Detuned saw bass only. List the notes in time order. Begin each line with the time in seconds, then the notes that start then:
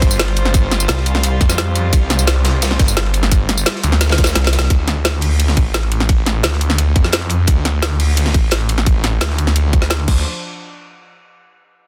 0.02 G1
1.41 F2
1.93 C2
2.79 G1
3.84 D2
4.70 D2
5.57 A1
6.44 D2
6.96 F2
7.48 D2
8.34 A1
9.21 D2
10.08 D2